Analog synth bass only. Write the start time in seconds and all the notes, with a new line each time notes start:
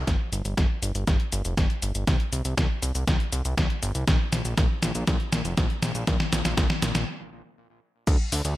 0.07 G1
0.32 G1
0.45 G1
0.57 G1
0.82 G1
0.95 G1
1.08 G1
1.33 G1
1.45 F1
1.57 G1
1.83 G1
1.95 G1
2.07 C2
2.33 C2
2.45 C2
2.57 C2
2.82 C2
2.95 C2
3.07 C2
3.33 C2
3.45 C2
3.58 C2
3.83 G1
3.95 C2
4.08 A#1
4.32 A#1
4.45 A#1
4.58 A#1
4.83 A#1
4.95 A#1
5.08 A#1
5.32 A#1
5.45 F1
5.58 A#1
5.82 A#1
5.95 A#1
6.07 A#1
6.33 A#1
6.45 A#1
6.57 A#1
6.82 A#1
6.95 A#1
8.07 D2
8.32 D2
8.45 D2